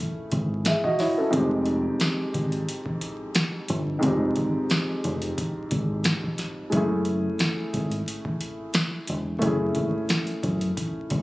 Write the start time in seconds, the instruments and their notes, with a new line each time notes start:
Already playing: grand piano A3 C#4 E4 G#4
0.32 fingered electric bass G#1, kick, closed hi-hat
0.65 grand piano G#4 E5, snare, closed hi-hat
0.84 grand piano F#4 D#5, kick
0.99 grand piano E4 C#5, snare, open hi-hat
1.18 grand piano C#4 A4
1.30 fingered electric bass F1, grand piano F2 G#3 C4, kick, closed hi-hat
1.35 grand piano D#4 G4
1.66 closed hi-hat
2.00 snare, closed hi-hat
2.34 fingered electric bass G#1, kick, closed hi-hat
2.52 closed hi-hat
2.68 closed hi-hat
2.86 kick
3.01 closed hi-hat
3.35 snare, closed hi-hat
3.69 fingered electric bass G1, closed hi-hat
3.99 grand piano F2 G#3 C4, kick, closed hi-hat
4.03 fingered electric bass F1, grand piano D#4 G4
4.36 fingered electric bass G#1, kick, closed hi-hat
4.70 snare, closed hi-hat
5.04 fingered electric bass F1, closed hi-hat
5.22 closed hi-hat
5.38 kick, closed hi-hat
5.71 fingered electric bass G#1, kick, closed hi-hat
6.04 snare, closed hi-hat
6.23 kick
6.38 snare, closed hi-hat
6.70 fingered electric bass F#1, grand piano G#3 C#4, kick, closed hi-hat
6.74 grand piano A3 E4 G#4
7.05 closed hi-hat
7.39 snare, closed hi-hat
7.74 fingered electric bass G#1, kick, closed hi-hat
7.91 closed hi-hat
8.08 closed hi-hat
8.25 kick
8.41 closed hi-hat
8.74 snare, closed hi-hat
9.08 fingered electric bass E1, closed hi-hat
9.39 fingered electric bass F#1, grand piano A3 C#4, kick, closed hi-hat
9.43 grand piano E4 G#4
9.75 fingered electric bass G#1, kick, closed hi-hat
10.09 snare, closed hi-hat
10.27 closed hi-hat
10.43 fingered electric bass F#1, kick, closed hi-hat
10.61 closed hi-hat
10.77 kick, closed hi-hat
11.10 fingered electric bass G#1, kick, closed hi-hat